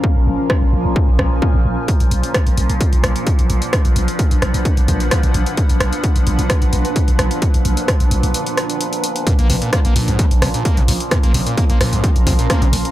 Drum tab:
HH |----------------|xxxxxxxxxxxxxxxx|xxxxxxxxxxxxxxxx|xxxxxxxxxxxxxxxx|
SD |----r-----r-----|----r-----r-----|r-----r-----r---|--r-----r-----r-|
BD |o---o---o-o-o---|o---o---o---o---|o---o---o-o-o---|o---o---o---o---|

HH |xxxxxxxxxxxxxxxx|xxoxxxoxxxoxxxox|xxoxxxoxxxoxxxox|
SD |----r-----r-----|----r-----r-----|r-----r-----r---|
BD |o---o-----------|o---o---o---o---|o---o---o-o-o---|